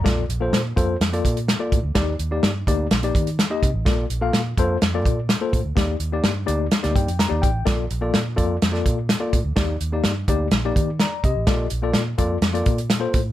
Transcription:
<<
  \new Staff \with { instrumentName = "Tine electric piano" } { \time 4/4 \key bes \major \tempo 4 = 126 << { r1 | r1 | r1 | r2 r8 g''8 bes''8 g''8 |
r1 | r2. <d'' bes''>8 <g' ees''>8~ | <g' ees''>8 r2. r8 | } \\ { <bes f' a' d''>8 r16 <bes f' a' c''>8 r16 <bes f' a' c''>8 r16 <bes f' a' d''>8 r8 <bes f' a' d''>8 r16 | <bes ees' g' d''>8 r16 <bes ees' g' d''>8 r16 <bes ees' g' d''>8 r16 <bes ees' g' d''>8 r8 <bes ees' g' ees''>8 r16 | <bes f' a' d''>8 r16 <bes f' a' f''>8 r16 <bes f' a' c''>8 r16 <bes f' a' d''>8 r8 <bes f' a' c''>8 r16 | <bes ees' g' d''>8 r16 <bes ees' g' d''>8 r16 <bes ees' g' d''>8 r16 <bes ees' g' d''>8 r8 <bes ees' g' d''>8 r16 |
<bes f' a' d''>8 r16 <bes f' a' d''>8 r16 <bes f' a' d''>8 r16 <bes f' a' d''>8 r8 <bes f' a' d''>8 r16 | <bes ees' g' d''>8 r16 <bes ees' g' d''>8 r16 <bes ees' g' d''>8 r16 <bes ees' g' d''>8 r4 r16 | <bes f' a' d''>8 r16 <bes f' a' d''>8 r16 <bes f' a' d''>8 r16 <bes f' a' d''>8 r8 <bes f' a' c''>8 r16 | } >> }
  \new Staff \with { instrumentName = "Fingered electric bass" } { \clef bass \time 4/4 \key bes \major bes,,8 bes,,8 bes,8 f,8 f,8 bes,8. r16 a,16 d,16 | ees,8 ees,8 g,8 d,8 bes,,8 ees8. r16 c16 a,,16 | bes,,8 bes,,8 bes,8 f,8 f,8 bes,8. r16 a,16 d,16 | ees,8 ees,8 g,8 d,8 r16 d,16 g,16 f,8 ees,16 a,,8 |
bes,,8 bes,,8 bes,8 f,8 f,8 bes,8. r16 a,16 d,16 | r8 ees,8 g,8 d,8 bes,,8 ees8. r16 c16 a,,16 | bes,,8 bes,,8 bes,8 f,8 f,8 bes,4 a,8 | }
  \new DrumStaff \with { instrumentName = "Drums" } \drummode { \time 4/4 <hh bd sn>8 hh8 <hh sn>8 <hh bd>8 <hh sn>16 hh16 <hh bd>16 hh16 <hh sn>8 <hh bd>8 | <hh bd sn>8 hh8 <hh sn>8 <hh bd>8 <hh sn>16 hh16 <hh bd>16 hh16 <hh sn>8 <hh bd>8 | <hh bd sn>8 hh8 <hh sn>8 <hh bd>8 <hh sn>8 <hh bd>8 <hh sn>8 <hh bd>8 | <hh bd sn>8 hh8 <hh sn>8 hh8 <hh sn>16 <hh sn>16 <hh bd>16 hh16 <hh sn>8 <hh bd>8 |
<hh bd sn>8 hh8 <hh sn>8 <hh bd>8 <hh sn>16 sn16 <hh bd>8 <hh sn>8 <hh bd>8 | <hh bd sn>8 hh8 <hh sn>8 <hh bd>8 <hh sn>8 <hh bd>8 <hh sn>8 <hh bd>8 | <hh bd sn>8 hh8 <hh sn>8 <hh bd>8 <hh sn>16 hh16 <hh bd>16 hh16 <hh sn>8 <hh bd>8 | }
>>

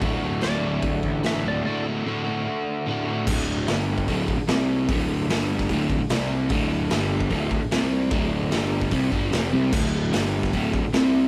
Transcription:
<<
  \new Staff \with { instrumentName = "Electric slide guitar" } { \time 4/4 \key d \mixolydian \tempo 4 = 149 r4 d''2 e''8 d''8 | d''8 r2. r8 | r1 | r1 |
r1 | r1 | r1 | }
  \new Staff \with { instrumentName = "Overdriven electric guitar" } { \clef bass \time 4/4 \key d \mixolydian <d, a, d a fis'>8 <d a fis'>8 <d, a, d a fis'>8 <d a fis'>4. <a, d a fis'>8 <d a fis'>8 | <d, a, d a fis'>8 <d a fis'>8 <d, a, d a fis'>8 <d a fis'>4. <a, d a fis'>8 <d a fis'>8 | <d, a, d>4 <g, d g>4 <d, a, d>8. r16 <c g c'>4 | <d, a, d>4 <g, d g>4 <d, a, d>8. r16 <c g c'>4 |
<d, a, d>4 <g, d g>4 <d, a, d>8. r16 <c g c'>4 | <d, a, d>4 <g, d g>4 <c g c'>8 <g, d g>8 <f, c f>8 <c g c'>8 | <d, a, d>4 <g, d g>4 <d, a, d>8. r16 <c g c'>4 | }
  \new Staff \with { instrumentName = "Picked electric bass" } { \clef bass \time 4/4 \key d \mixolydian d,,8 d,,8 d,,8 d,,8 d,,8 a,,8 a,,8 d,,8 | r1 | d,,4 g,,4 d,,8. r16 c,4 | d,,4 g,,4 d,,8. r16 c,4 |
d,,4 g,,4 d,,8. r16 c,4 | d,,4 g,,4 c,8 g,,8 f,,8 c,8 | d,,4 g,,4 d,,8. r16 c,4 | }
  \new DrumStaff \with { instrumentName = "Drums" } \drummode { \time 4/4 <hho bd>4 <hho sn>4 <hho bd>8 bd8 <hho sn>4 | r4 r4 r4 r4 | <cymc bd>4 <hho sn>8. bd16 <hho bd>8 bd8 <hho sn>4 | <hho bd>4 <hho sn>8. <bd sn>16 <hho bd>8 bd8 <hho sn>4 |
<hho bd>4 <hho sn>8. bd16 <hho bd>8 bd8 <hho sn>4 | <hho bd>4 <hho sn>8. bd16 <hho bd>8 bd8 <hho sn>4 | <cymc bd>4 <hho sn>8. <bd sn>16 <hho bd>8 bd8 <hho sn>4 | }
>>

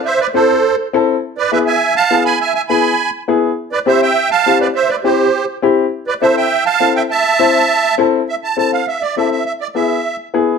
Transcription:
<<
  \new Staff \with { instrumentName = "Accordion" } { \time 4/4 \key a \minor \tempo 4 = 204 <c'' e''>8 <b' d''>8 <a' c''>4. r4. | r8 <b' d''>8 <b' e''>8 <e'' gis''>4 <f'' a''>4 <gis'' b''>8 | <e'' gis''>8 <e'' gis''>8 <gis'' b''>4. r4. | r8 <b' d''>8 <c'' e''>8 <e'' g''>4 <f'' a''>4 <b' d''>8 |
<c'' e''>8 <b' d''>8 <g' c''>4. r4. | r8 <b' d''>8 <c'' e''>8 <e'' g''>4 <f'' a''>4 <e'' g''>8 | <e'' a''>2. r4 | e''8 a''8 a''8 f''8 e''8 d''8 e''8 e''8 |
e''8 d''8 e''4. r4. | }
  \new Staff \with { instrumentName = "Upright piano" } { \time 4/4 \key a \minor r4 <c' e' a'>8 r4. <c' e' a'>8 r8 | r4 <b e' gis'>8 r4. <b e' gis'>8 r8 | r4 <b e' gis'>8 r4. <b e' gis'>8 r8 | r4 <c' e' g'>8 r4. <c' e' g'>8 r8 |
r4 <c' e' g'>8 r4. <c' e' g'>8 r8 | r4 <c' e' a'>8 r4. <c' e' a'>8 r8 | r4 <c' e' c''>8 r4. <c' e' a'>8 r8 | r4 <c' e' a'>8 r4. <c' e' a'>8 r8 |
r4 <b e' gis'>8 r4. <b e' gis'>8 r8 | }
>>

